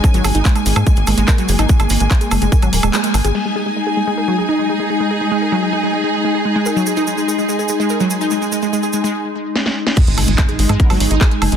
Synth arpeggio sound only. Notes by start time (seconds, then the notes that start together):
0.04 A#4
0.14 F#3
0.25 G#4
0.35 D#4
0.45 G#3
0.56 G#3
0.66 G#3
0.76 G#3
0.87 G#3
0.97 G#4
1.07 G#3
1.18 G#3
1.28 A#4
1.38 F#3
1.49 G#4
1.59 D#4
1.69 G#3
1.80 G#3
1.90 G#3
2.00 G#3
2.11 G#3
2.21 G#4
2.31 G#3
2.42 G#3
2.52 A#4
2.63 F#3
2.73 A#4
2.83 G#3
2.94 G#3
3.04 G#3
3.14 A#3
3.25 G#4
3.35 G#3
3.45 G#3
3.56 G#3
3.66 G#3
3.76 G#3
3.87 G#4
3.97 G#3
4.07 G#3
4.18 A#4
4.28 F#3
4.38 G#4
4.49 D#4
4.59 G#3
4.69 G#3
4.80 G#3
4.90 G#3
5.00 G#3
5.11 G#4
5.21 G#3
5.31 G#3
5.42 A#4
5.52 F#3
5.63 G#4
5.73 D#4
5.83 G#3
5.94 G#3
6.04 G#3
6.14 G#3
6.25 G#3
6.35 G#4
6.45 G#3
6.56 G#3
6.66 A#4
6.76 F#3
6.87 G#4
6.97 D#4
7.07 G#3
7.18 G#3
7.28 G#3
7.38 G#3
7.49 G#3
7.59 G#4
7.69 G#3
7.80 G#3
7.90 A#4
8.00 F#3
8.11 G#4
8.21 D#4
8.31 G#3
8.42 G#3
8.52 G#3
8.63 G#3
8.73 G#3
8.83 G#4
8.94 G#3
9.04 G#3
9.97 G#3
10.07 G#3
10.18 G#3
10.28 G#3
10.38 G#3
10.49 G#4
10.59 G#3
10.69 G#3
10.80 A#4
10.90 F#3
11.00 G#4
11.11 D#4
11.21 G#3
11.31 G#3
11.42 G#3
11.52 G#3